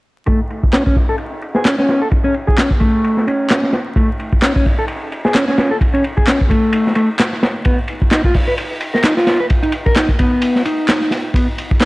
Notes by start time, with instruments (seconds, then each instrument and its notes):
0.26 clean electric guitar A3, kick, ride
0.50 ride
0.63 kick
0.73 clean electric guitar C#4, snare, clap, ride
0.86 clean electric guitar C#4, kick
0.96 kick, open hi-hat
1.09 clean electric guitar A4
1.18 ride
1.42 ride
1.55 clean electric guitar G#4, snare
1.65 clean electric guitar C#4, snare, clap, ride
1.78 clean electric guitar C#4, snare
1.89 snare, ride
2.02 clean electric guitar A4
2.11 kick, ride
2.24 clean electric guitar C#4, ride
2.34 ride
2.47 clean electric guitar G#4, kick
2.57 clean electric guitar C#4, snare, clap, ride
2.71 kick
2.80 clean electric guitar A3, kick, ride
3.04 ride
3.17 snare
3.27 clean electric guitar C#4, ride
3.50 snare, clap, ride
3.63 snare
3.73 snare, ride
3.96 clean electric guitar A3, kick, ride
4.19 ride
4.33 kick
4.42 clean electric guitar C#4, snare, clap, ride
4.55 clean electric guitar C#4, kick
4.66 kick, open hi-hat
4.79 clean electric guitar A4
4.88 ride
5.12 ride
5.25 clean electric guitar G#4, snare
5.35 clean electric guitar C#4, snare, clap, ride
5.48 clean electric guitar C#4, snare
5.58 snare, ride
5.71 clean electric guitar A4
5.81 kick, ride
5.93 clean electric guitar C#4, ride
6.04 ride
6.17 clean electric guitar G#4, kick
6.27 clean electric guitar C#4, snare, clap, ride
6.41 kick
6.50 clean electric guitar A3, kick, ride
6.73 ride
6.87 snare
6.95 clean electric guitar A3, ride
7.18 snare, clap, ride
7.33 snare
7.43 snare, ride
7.65 clean electric guitar B3, kick, ride
7.88 ride
8.02 kick
8.11 clean electric guitar D#4, snare, clap, ride
8.24 clean electric guitar F4, kick
8.34 kick, open hi-hat
8.48 clean electric guitar B4
8.58 ride
8.81 ride
8.94 clean electric guitar A#4, snare
9.03 clean electric guitar D#4, snare, clap, ride
9.17 clean electric guitar F4, snare
9.27 snare, ride
9.40 clean electric guitar B4
9.50 kick, ride
9.63 clean electric guitar D#4, ride
9.72 ride
9.86 clean electric guitar A#4, kick
9.96 clean electric guitar D#4, snare, clap, ride
10.09 kick
10.19 clean electric guitar B3, kick, ride
10.42 ride
10.56 snare
10.65 clean electric guitar D#4, ride
10.88 snare, clap, ride
11.01 snare
11.11 snare, ride
11.34 clean electric guitar B3, kick, ride
11.58 ride
11.71 kick
11.80 clean electric guitar D#4, snare, clap, ride